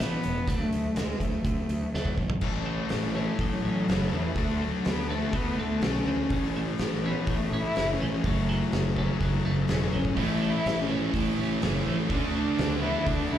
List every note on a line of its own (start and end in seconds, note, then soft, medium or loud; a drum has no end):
0.00 0.15 A1 medium
0.00 0.22 A2 medium
0.00 0.23 E3 medium
0.00 0.23 A3 loud
0.00 0.50 B3 medium
0.00 snare loud
0.23 0.40 E1 medium
0.23 0.46 A2 medium
0.23 0.46 E3 medium
0.23 closed hi-hat medium
0.48 0.63 D2 medium
0.48 0.71 D3 medium
0.48 0.72 F#3 medium
0.48 0.72 A3 loud
0.48 0.97 A3 medium
0.48 kick loud
0.48 closed hi-hat medium
0.73 0.88 D2 medium
0.73 0.95 D3 medium
0.73 0.95 F#3 medium
0.73 closed hi-hat medium
0.96 1.12 D2 medium
0.96 1.19 D3 medium
0.96 1.19 F#3 medium
0.96 1.22 G#3 medium
0.96 snare loud
0.96 closed hi-hat medium
1.20 1.36 D2 medium
1.20 1.43 D3 medium
1.20 1.43 F#3 medium
1.20 2.18 A3 medium
1.20 kick medium
1.20 closed hi-hat medium
1.45 1.60 D2 medium
1.45 1.67 D3 medium
1.45 1.68 F#3 medium
1.45 kick loud
1.45 closed hi-hat medium
1.69 1.85 D2 medium
1.69 1.92 D3 medium
1.69 1.92 F#3 medium
1.69 closed hi-hat medium
1.94 2.09 D2 medium
1.94 2.17 D3 medium
1.94 2.18 F#3 medium
1.94 2.18 A3 medium
1.94 snare medium
2.05 kick medium
2.17 2.33 A1 medium
2.17 2.41 D3 medium
2.17 2.41 F#3 medium
2.17 kick medium
2.30 floor tom medium
2.41 2.77 A1 medium
2.41 3.14 A2 medium
2.41 3.64 A2 medium
2.41 3.14 E3 medium
2.41 3.17 A3 medium
2.41 3.15 C#4 medium
2.41 3.15 E4 medium
2.41 3.14 A4 medium
2.41 kick loud
2.41 crash loud
2.66 3.41 A3 medium
2.89 3.27 A1 medium
2.89 3.89 E3 medium
2.89 snare medium
2.89 open hi-hat medium
3.15 3.87 A2 medium
3.15 3.88 E3 medium
3.15 3.36 A3 medium
3.15 3.89 A3 medium
3.15 3.64 C#4 medium
3.15 3.88 C#4 medium
3.15 3.87 E4 medium
3.15 3.91 A4 medium
3.35 3.57 A1 medium
3.35 3.41 F3 medium
3.39 4.13 F#3 medium
3.39 4.15 A3 medium
3.39 kick medium
3.39 open hi-hat soft
3.64 3.82 A1 medium
3.64 4.38 C#4 medium
3.88 4.06 F#1 medium
3.88 4.35 A2 medium
3.88 4.36 E3 medium
3.88 4.37 E3 medium
3.88 4.37 A3 medium
3.88 4.37 C#4 medium
3.88 4.37 E4 medium
3.88 4.39 A4 medium
3.88 snare loud
3.88 open hi-hat medium
4.12 4.30 E2 medium
4.12 4.37 E3 medium
4.12 4.61 A3 medium
4.36 4.71 D2 medium
4.36 5.08 D3 medium
4.36 4.85 D3 medium
4.36 5.10 A3 medium
4.36 4.66 A3 medium
4.36 5.09 D4 medium
4.36 5.09 F#4 medium
4.36 5.08 A4 loud
4.36 kick loud
4.36 open hi-hat medium
4.62 4.91 F#3 medium
4.62 5.34 A3 medium
4.85 5.21 D2 medium
4.85 5.82 D3 medium
4.85 snare loud
4.85 open hi-hat medium
4.89 5.11 B3 loud
5.09 5.80 D3 medium
5.09 5.83 A3 medium
5.09 5.36 A3 medium
5.09 5.58 B3 medium
5.09 5.82 D4 medium
5.09 5.81 F#4 medium
5.09 5.84 A4 medium
5.33 5.51 D2 medium
5.33 6.07 A3 medium
5.33 5.62 B3 loud
5.33 kick medium
5.33 open hi-hat soft
5.57 5.75 D2 medium
5.57 5.85 A3 medium
5.57 6.32 B3 medium
5.82 6.00 B1 medium
5.82 6.29 D3 medium
5.82 6.31 D3 medium
5.82 6.33 A3 medium
5.82 6.56 C#4 medium
5.82 6.30 D4 medium
5.82 6.30 F#4 medium
5.82 9.35 A4 medium
5.82 snare loud
5.82 open hi-hat medium
6.06 6.24 D2 medium
6.06 6.56 A3 medium
6.30 6.66 A1 medium
6.30 7.03 A2 medium
6.30 7.53 A2 medium
6.30 7.05 E3 medium
6.30 7.05 A3 medium
6.30 kick loud
6.30 open hi-hat medium
6.34 7.04 C#4 loud
6.34 7.03 E4 medium
6.57 7.30 A3 medium
6.78 7.15 A1 medium
6.78 7.77 E3 medium
6.78 snare loud
6.78 open hi-hat medium
7.03 7.75 A2 medium
7.03 7.78 E3 medium
7.03 7.78 A3 medium
7.03 7.78 C#4 medium
7.03 7.53 C#4 medium
7.03 7.79 E4 medium
7.08 7.28 B3 medium
7.27 7.45 A1 medium
7.27 7.59 A3 medium
7.27 8.01 A3 medium
7.27 kick loud
7.27 open hi-hat medium
7.52 7.70 A1 medium
7.52 8.98 C#4 medium
7.62 7.95 E4 loud
7.76 7.94 F#1 medium
7.76 8.24 A2 medium
7.76 8.28 E3 medium
7.76 8.23 E3 medium
7.76 8.25 A3 medium
7.76 8.26 C#4 medium
7.76 8.27 E4 medium
7.76 snare loud
7.76 open hi-hat medium
7.94 8.24 C#4 medium
8.02 8.19 A1 medium
8.02 8.49 A3 medium
8.24 8.59 F#1 medium
8.24 9.46 F#2 medium
8.24 8.95 F#3 medium
8.24 8.93 A3 medium
8.24 8.99 A3 medium
8.24 8.97 C#4 medium
8.24 8.96 F#4 loud
8.24 kick loud
8.24 open hi-hat medium
8.49 9.21 E3 medium
8.72 9.08 F#1 medium
8.72 9.69 C#3 medium
8.72 snare loud
8.72 open hi-hat soft
8.97 9.68 F#3 medium
8.97 9.45 A3 medium
8.97 9.70 A3 medium
8.97 9.69 C#4 medium
8.97 9.68 F#4 medium
8.97 kick medium
9.21 9.38 F#1 medium
9.21 9.92 E3 medium
9.21 kick medium
9.21 open hi-hat soft
9.45 9.63 F#1 medium
9.45 10.42 A3 medium
9.68 9.87 E1 medium
9.68 10.18 C#3 medium
9.68 10.17 F#3 medium
9.68 10.18 A3 medium
9.68 snare loud
9.68 open hi-hat medium
9.72 10.18 C#4 medium
9.72 10.18 F#4 medium
9.93 10.12 G#1 medium
9.93 10.18 E3 medium
9.93 10.19 C#4 medium
10.05 kick medium
10.16 10.52 A1 medium
10.16 10.88 A2 medium
10.16 11.38 A2 medium
10.16 10.89 E3 medium
10.16 10.51 A3 medium
10.16 10.91 A3 medium
10.16 10.89 C#4 medium
10.16 10.88 E4 medium
10.16 kick medium
10.16 open hi-hat medium
10.42 11.13 A3 medium
10.50 10.81 E4 loud
10.66 11.01 A1 medium
10.66 11.62 E3 medium
10.66 snare loud
10.66 open hi-hat medium
10.80 11.13 C#4 medium
10.89 11.60 A2 medium
10.89 11.61 E3 medium
10.89 11.63 A3 medium
10.89 11.38 C#4 medium
10.89 11.61 C#4 medium
10.89 11.61 E4 medium
11.12 11.32 A1 medium
11.12 11.85 A3 medium
11.12 11.87 A3 medium
11.12 kick loud
11.12 open hi-hat medium
11.39 11.56 A1 medium
11.39 12.11 C#4 medium
11.61 11.80 F#1 medium
11.61 12.09 A2 medium
11.61 12.09 E3 medium
11.61 12.11 E3 medium
11.61 12.12 A3 medium
11.61 12.10 C#4 medium
11.61 12.10 E4 medium
11.61 snare loud
11.61 open hi-hat medium
11.87 12.04 A1 medium
11.87 12.35 A3 medium
12.10 12.45 D2 medium
12.10 12.82 D3 medium
12.10 12.58 D3 medium
12.10 12.84 A3 loud
12.10 12.34 C#4 medium
12.10 12.82 D4 medium
12.10 kick loud
12.10 open hi-hat medium
12.14 12.81 F#4 medium
12.34 13.06 A3 medium
12.34 12.79 D4 medium
12.58 12.94 D2 medium
12.58 13.38 D3 medium
12.58 snare loud
12.58 open hi-hat medium
12.82 13.38 D3 medium
12.82 13.38 A3 medium
12.82 13.30 B3 medium
12.82 13.38 D4 medium
12.82 13.08 E4 medium
12.82 13.38 F#4 medium
13.06 13.24 D2 medium
13.06 13.38 A3 medium
13.06 13.34 D4 medium
13.06 kick loud
13.06 open hi-hat medium
13.31 13.38 D2 medium
13.31 13.38 B3 medium
13.31 13.38 E4 medium